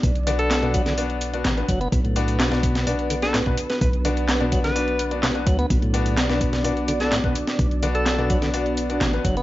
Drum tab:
HH |xxxxxxxxxxxxxxxx|xxxxxxxxxxxxxxxx|xxxxxxxxxxxxxxxx|xxxxxxxxxxxxxxxx|
CP |----x-------x---|----x-------x---|----x-------x---|----x-------x---|
SD |----o--o----o---|----oo-o---oo--o|----o--o----o---|----oo-o---oo--o|
BD |o-----o-------o-|o-----o------o--|o-----o-------o-|o-----o------o--|

HH |xxxxxxxxxxxxxxxx|
CP |----x-------x---|
SD |----o--o----o---|
BD |o-----o-------o-|